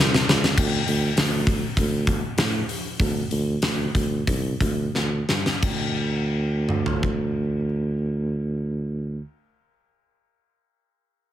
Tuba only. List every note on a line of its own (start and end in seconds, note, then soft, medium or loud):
0.00 0.26 C2 medium
0.28 0.56 C#2 medium
0.57 0.81 D2 medium
0.87 1.11 D2 medium
1.17 1.65 D2 medium
1.77 2.26 D2 medium
2.37 2.62 A2 medium
3.00 3.25 D2 medium
3.31 3.57 D2 medium
3.62 3.88 D2 medium
3.95 4.21 D2 medium
4.27 4.54 C2 medium
4.61 4.88 D2 medium
4.94 5.22 D2 medium
5.28 5.56 G2 medium
5.63 9.20 D2 medium